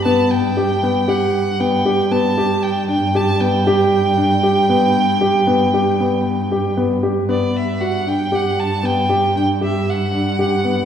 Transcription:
<<
  \new Staff \with { instrumentName = "Violin" } { \time 7/4 \key g \major \tempo 4 = 116 a''8 g''4. fis''4 g''4 a''4 g''8 g''8 a''8 g''8~ | g''1. r4 | d''8 e''8 fis''8 g''8 fis''8 a''8 g''4 g''8 e''8 fis''2 | }
  \new Staff \with { instrumentName = "Grand piano" } { \time 7/4 \key g \major b4 g'8 b8 g'4 b8 g'8 b8 g'4 d'8 g'8 b8 | g'4 d'8 g'8 b4 g'8 b8 g'8 b4 g'8 b8 g'8 | b4 fis'8 d'8 g'4 b8 g'8 d'8 g'4 d'8 g'8 b8 | }
  \new Staff \with { instrumentName = "Cello" } { \clef bass \time 7/4 \key g \major g,1.~ g,4~ | g,1.~ g,4 | g,1.~ g,4 | }
>>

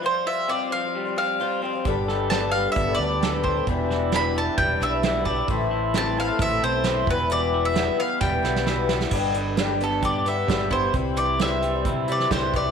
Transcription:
<<
  \new Staff \with { instrumentName = "Mandolin" } { \time 4/4 \key g \mixolydian \tempo 4 = 132 c''8 e''8 d''8 f''4 f''4 r8 | r4 a''8 f''8 e''8 d''4 c''8 | r4 b''8 a''8 g''8 e''4 d''8 | r4 a''8 f''8 e''8 c''4 b'8 |
d''8. e''8. f''8 g''4. r8 | r4. a'8 d''8 e''4 <e' c''>8 | r8 d''8 e''4. d''8 c''8 d''8 | }
  \new Staff \with { instrumentName = "Accordion" } { \time 4/4 \key g \mixolydian r1 | <d' g' a' b'>1 | <d' e' g' b'>1 | <c' e' a' c''>2.~ <c' e' a' c''>8 <b e' g' b'>8~ |
<b e' g' b'>1 | <b d' g' b'>1 | <c' e' g' c''>1 | }
  \new Staff \with { instrumentName = "Clean electric guitar" } { \time 4/4 \key g \mixolydian f8 f'8 c'8 f8 g8 c'8 f'8 c'8 | g8 a'8 d'8 g8 b8 d'8 a'8 d'8 | e,8 e'8 d'8 e8 g8 d'8 e'8 d'8 | a,8 e'8 c'8 e8 a8 c'8 e'8 e,8 |
e,8 e'8 b8 e8 g8 b8 e'8 b8 | g,8 d8 g8 b8 g'8 b8 g8 b8 | c8 e8 e8 g8 e'8 g8 e8 g8 | }
  \new Staff \with { instrumentName = "Twelve-string acoustic guitar" } { \time 4/4 \key g \mixolydian <f g c' f'>4 <f g c' f'>8 <f g c' f'>16 <g c' f'>8 <g c' f'>16 <f g c' f'>8 <f g c' f'>8 <f g c' f'>16 <g c' f'>16 | <g b d' a'>4 <g b d' a'>8 <g b d' a'>16 <b d' a'>8 <b d' a'>16 <g b d' a'>16 <b d' a'>16 <g b d' a'>8 <g b d' a'>16 <b d' a'>16 | <e, b, e g d' e'>4 <e, b, e g d' e'>8 <e g d' e'>8. <e g d' e'>16 <e g d' e'>16 <e g d' e'>16 <e, b, e g d' e'>8 <e g d' e'>16 <e g d' e'>16 | <a, e a c' e'>4 <a, e a c' e'>8 <e a c' e'>16 <a c' e'>8 <a c' e'>16 <e a c' e'>16 <a c' e'>16 <a, e a c' e'>8 <e g b e'>16 <e g b e'>16 |
<e, b, e g b e'>4 <e, b, e g b e'>8 <e g b e'>8. <e g b e'>16 <e g b e'>16 <e g b e'>16 <e, b, e g b e'>8 <e g b e'>16 <e g b e'>16 | <g, d g b d' g'>8 <g b d' g'>8 <g, d g b d' g'>8 <g b d' g'>16 <g b d' g'>8. <g b d' g'>8 <g, d g b d' g'>8 <g b d' g'>16 <g b d' g'>16 | <c e g c' e'>8 <e g c' e'>8 <c e g c' e'>8 <e g c' e'>16 <g c' e'>8. <e g c' e'>8 <c e g c' e'>8 <e g c' e'>16 <c' e'>16 | }
  \new Staff \with { instrumentName = "Picked electric bass" } { \clef bass \time 4/4 \key g \mixolydian r1 | g,,2 g,,8 d,4. | e,,2 e,,8 b,,4. | a,,2 a,,8 b,,4 e,,8~ |
e,,4. r8 e,,8 b,,4. | g,,2 g,4 g,,4 | c,2 c4 c,4 | }
  \new DrumStaff \with { instrumentName = "Drums" } \drummode { \time 4/4 r4 r4 r4 r4 | <hh bd>8 sn8 <hh sn>4 <hh bd>4 <hh sn>8 bd8 | <hh bd>8 sn8 <hh sn>4 <hh bd>8 sn8 <hh sn>8 bd8 | <hh bd>4 <hh sn>4 <hh bd>4 <hh sn>8 bd8 |
hh4 <hh sn>4 <bd sn>8 sn16 sn16 sn8 sn16 sn16 | <cymc bd>8 hh8 <hh sn>8 hh8 <hh bd>8 hh8 <hh bd sn>8 <hh bd>8 | <hh bd>8 hh8 <hh sn>8 hh8 <hh bd>8 hh16 sn16 <hh bd sn>8 <hh bd>8 | }
>>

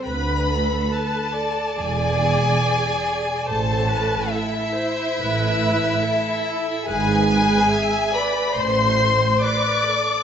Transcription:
<<
  \new Staff \with { instrumentName = "Violin section" } { \time 4/4 \key a \minor \tempo 4 = 70 b''4 a''4 gis''2 | a''4 e''2. | gis''4. b''8 c'''4 d'''4 | }
  \new Staff \with { instrumentName = "Viola section" } { \time 4/4 \key a \minor b'8 a'8 b'8 d''2~ d''8 | c''8 b'8 a'8 c''8 b'4 a'4 | b'8 b'8 e''8 d''8 c''4 b'8 a'8 | }
  \new Staff \with { instrumentName = "Violin section" } { \time 4/4 \key a \minor b'4 a'4 gis'2 | a'4 e'2. | gis'4. b'8 c''4 d''4 | }
  \new Staff \with { instrumentName = "Cello section" } { \clef bass \time 4/4 \key a \minor d,4 r4 e,4 r4 | a,4 r4 a,4 r4 | gis,4 r4 a,4 r4 | }
  \new Staff \with { instrumentName = "Double bass section" } { \clef bass \time 4/4 \key a \minor d,4 r4 e,,4 r4 | a,,4 r4 a,,4 r4 | gis,,4 r4 a,,4 r4 | }
>>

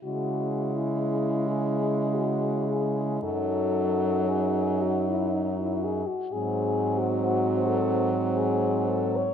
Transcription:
<<
  \new Staff \with { instrumentName = "French horn" } { \time 3/4 \key cis \minor \tempo 4 = 57 \tuplet 3/2 { fis'4 e'8~ e'8 gis'4 } fis'8 gis'8 | a'4 gis'8 fis'16 e'16 dis'16 e'16 gis'16 fis'16 | \tuplet 3/2 { gis'4 fis'8~ fis'8 a'8 r8 } gis'8 a'16 cis''16 | }
  \new Staff \with { instrumentName = "French horn" } { \time 3/4 \key cis \minor e'2. | dis'2~ dis'8. r16 | bis2. | }
  \new Staff \with { instrumentName = "French horn" } { \clef bass \time 3/4 \key cis \minor gis2. | fis2~ fis8. r16 | fis2. | }
  \new Staff \with { instrumentName = "French horn" } { \clef bass \time 3/4 \key cis \minor cis2. | fis,2~ fis,8. r16 | gis,2. | }
>>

